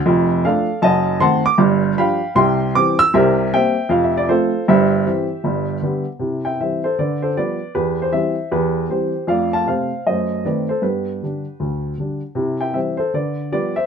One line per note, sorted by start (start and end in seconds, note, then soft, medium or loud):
0.06 0.38 F1 medium
0.06 0.38 F2 medium
0.45 0.66 F3 soft
0.45 0.66 A3 soft
0.45 0.66 D4 medium
0.45 0.81 A4 medium
0.45 0.81 D5 medium
0.45 0.83 F5 medium
0.82 1.15 F#1 medium
0.82 1.15 F#2 medium
0.82 1.19 D#5 medium
0.82 1.19 F#5 medium
0.82 1.20 A5 medium
1.20 1.42 D#3 medium
1.20 1.42 A3 soft
1.20 1.42 C4 medium
1.20 1.43 F#5 medium
1.20 1.43 A5 medium
1.20 1.44 C6 medium
1.46 1.60 D6 loud
1.58 1.91 G1 medium
1.58 1.91 G2 medium
1.97 2.18 F3 medium
1.97 2.19 G3 medium
1.97 2.19 D4 medium
1.97 2.34 F5 medium
1.97 2.34 G5 medium
1.97 2.36 B5 medium
2.35 2.68 C2 medium
2.35 2.68 C3 medium
2.35 2.72 E5 medium
2.35 2.72 G5 medium
2.35 2.74 C6 medium
2.75 2.96 E3 medium
2.75 2.96 G3 soft
2.75 2.96 C4 medium
2.75 2.98 D6 loud
2.99 3.13 E6 loud
3.14 3.46 C2 medium
3.14 3.46 C3 medium
3.14 3.50 A#4 medium
3.14 3.50 C5 medium
3.14 3.52 E5 medium
3.53 3.73 G3 soft
3.53 3.74 A#3 soft
3.53 3.75 C4 medium
3.53 3.89 C5 medium
3.53 3.89 E5 medium
3.53 3.91 G5 medium
3.89 4.22 F1 medium
3.89 4.22 F2 medium
3.89 4.03 F5 medium
4.04 4.16 E5 medium
4.17 4.29 D5 medium
4.29 4.50 F3 soft
4.29 4.50 A3 medium
4.29 4.51 C4 medium
4.29 4.65 F4 medium
4.29 4.65 A4 medium
4.29 4.67 C5 medium
4.68 5.00 G1 medium
4.68 5.00 G2 medium
4.68 6.03 G4 medium
4.68 6.03 C5 medium
4.68 6.07 E5 medium
5.06 5.26 E3 soft
5.06 5.27 G3 soft
5.06 5.27 C4 soft
5.44 5.76 G1 medium
5.44 5.77 G2 medium
5.82 6.03 D3 soft
5.82 6.04 G3 soft
5.82 6.04 B3 soft
6.19 6.52 C3 medium
6.19 6.42 E4 soft
6.45 6.59 E5 soft
6.45 6.59 G5 medium
6.60 6.81 E3 soft
6.60 6.81 G3 soft
6.60 6.82 C4 soft
6.60 6.83 C5 soft
6.60 6.83 E5 medium
6.84 6.98 A4 medium
6.84 6.98 C5 medium
6.99 7.31 D3 medium
6.99 7.21 B4 soft
6.99 7.22 D5 medium
7.22 7.36 A4 soft
7.22 7.36 C5 medium
7.37 7.58 F3 soft
7.37 7.58 G3 soft
7.37 7.58 B3 soft
7.37 7.73 B4 soft
7.37 7.75 D5 medium
7.75 8.08 E2 medium
7.75 8.00 G4 medium
7.75 8.00 B4 medium
8.02 8.12 C5 medium
8.12 8.34 E3 soft
8.12 8.34 G3 soft
8.12 8.34 C4 soft
8.12 8.49 C5 soft
8.12 8.51 E5 medium
8.52 8.84 E2 medium
8.52 8.88 G4 soft
8.52 8.90 B4 medium
8.89 9.11 E3 soft
8.89 9.11 G3 soft
8.89 9.11 C4 soft
8.89 9.27 G4 soft
8.89 9.29 C5 medium
9.27 9.61 F2 medium
9.27 9.50 A3 soft
9.27 9.51 D5 medium
9.27 9.52 F5 medium
9.53 9.66 F5 medium
9.53 9.68 A5 medium
9.67 9.89 C3 soft
9.67 9.88 A3 soft
9.67 9.89 C4 soft
9.67 10.04 C5 soft
9.67 10.06 F5 medium
10.07 10.39 F#2 soft
10.07 10.29 A3 soft
10.07 10.43 C5 soft
10.07 10.45 D#5 medium
10.45 10.66 D#3 soft
10.45 10.66 A3 soft
10.45 10.66 C4 soft
10.45 10.67 B4 soft
10.45 10.69 D5 medium
10.69 10.83 A4 soft
10.69 10.83 C5 medium
10.82 11.15 G2 soft
10.82 11.04 B3 soft
10.82 12.18 G4 soft
10.82 12.22 B4 medium
11.23 11.44 D3 soft
11.23 11.44 G3 soft
11.23 11.44 D4 soft
11.60 11.93 D2 medium
11.98 12.19 D3 soft
11.98 12.20 G3 soft
11.98 12.21 D4 soft
12.35 12.69 C3 medium
12.35 12.58 E4 soft
12.61 12.72 E5 medium
12.61 12.76 G5 medium
12.73 12.95 E3 soft
12.73 12.96 G3 soft
12.73 12.96 C4 soft
12.73 12.96 C5 soft
12.73 12.99 E5 medium
12.97 13.13 A4 medium
12.97 13.13 C5 medium
13.14 13.47 D3 soft
13.14 13.50 B4 soft
13.14 13.51 D5 medium
13.52 13.73 F3 soft
13.52 13.74 G3 soft
13.52 13.74 B3 soft
13.52 13.75 B4 soft
13.52 13.76 D5 medium
13.76 13.86 C5 medium
13.76 13.86 E5 medium